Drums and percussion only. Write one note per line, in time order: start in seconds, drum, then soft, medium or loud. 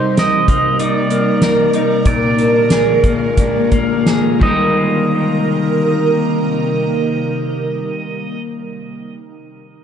0.17 snare medium
0.17 closed hi-hat medium
0.48 kick medium
0.48 closed hi-hat soft
0.79 closed hi-hat medium
1.10 closed hi-hat soft
1.41 snare medium
1.41 closed hi-hat medium
1.73 closed hi-hat soft
2.05 kick medium
2.05 closed hi-hat medium
2.38 closed hi-hat soft
2.70 snare medium
2.70 closed hi-hat medium
3.04 kick medium
3.04 closed hi-hat soft
3.37 kick medium
3.37 closed hi-hat medium
3.72 kick medium
3.72 closed hi-hat soft
4.06 snare medium
4.06 closed hi-hat medium
4.41 kick medium
4.41 crash medium